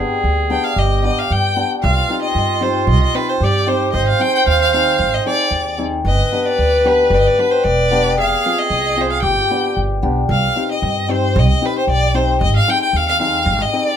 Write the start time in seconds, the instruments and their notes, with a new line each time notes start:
Already playing: hammered dulcimer B3 D4, clarinet G#4
0.00 hammered dulcimer G4
0.24 upright bass D2
0.50 hammered dulcimer B3 D4 G4, violin G5
0.64 violin F5
0.76 upright bass G1, clarinet G4, violin D#5
1.03 hammered dulcimer B3 D4 G4, violin D#5
1.19 violin F5
1.31 upright bass G2, violin G5
1.56 hammered dulcimer B3 D4 G4
1.83 upright bass C2, clarinet F4, violin F5
2.08 hammered dulcimer C4 D#4 G4
2.22 violin D#5
2.35 upright bass G2
2.60 hammered dulcimer C4 D#4 G4, violin C5
2.87 upright bass C2, violin D#5
3.03 violin D#5
3.14 hammered dulcimer C4 D#4 G4, violin B4
3.29 violin C5
3.41 upright bass G2, clarinet G4, violin D5
3.66 hammered dulcimer C4 D#4 G4, violin C5
3.92 upright bass G#1, clarinet C5, violin D#5
4.08 violin F5
4.19 hammered dulcimer C4 D#4 G#4, violin G5
4.35 violin G5
4.47 upright bass D#2, violin F5
4.61 violin F5
4.73 hammered dulcimer C4 D#4 G#4, violin F5
4.99 upright bass G#1
5.14 violin D#5
5.25 hammered dulcimer C4 D#4 G#4, violin D5
5.51 upright bass D#2
5.78 hammered dulcimer C4 D#4 G#4
6.05 upright bass G1, clarinet B4, violin D#5
6.32 hammered dulcimer B3 D4 G4
6.36 violin D#5
6.45 violin D5
6.58 upright bass D2
6.85 hammered dulcimer B3 D4 G4, violin B4
7.10 upright bass G1, violin D5
7.20 violin D#5
7.26 violin D5
7.38 hammered dulcimer B3 D4 G4, violin B4
7.51 violin C5
7.64 upright bass E1, violin D5
7.91 hammered dulcimer B3 D4 G4
8.16 upright bass F1, clarinet G#4, violin F5
8.45 hammered dulcimer C4 F4 G#4
8.58 violin D#5
8.70 upright bass C2
8.97 hammered dulcimer C4 F4 G#4, violin C5
9.10 violin F5
9.22 upright bass G1, clarinet G4, violin G5
9.51 hammered dulcimer B3 D4 G4
9.77 upright bass G1
10.02 upright bass B1, hammered dulcimer B3 D4 G4
10.29 upright bass C2, violin F5
10.56 hammered dulcimer C4 D#4 G4
10.71 violin D#5
10.82 upright bass G2
11.08 hammered dulcimer C4 D#4 G4, violin C5
11.36 upright bass C2, violin D#5
11.48 violin D#5
11.61 hammered dulcimer C4 D#4 G4
11.65 violin B4
11.78 violin C5
11.87 upright bass B1, violin D5
12.14 hammered dulcimer C4 D#4 G4, violin C5
12.41 upright bass G#1, violin D#5
12.56 violin F5
12.67 hammered dulcimer C4 D#4 G#4, violin G5
12.83 violin G5
12.93 upright bass D#2, violin F5
13.09 violin F5
13.19 hammered dulcimer C4 D#4 G#4, violin F5
13.46 upright bass G#1
13.61 violin D#5
13.73 hammered dulcimer C4 D#4 G#4, violin D#5
13.85 violin D5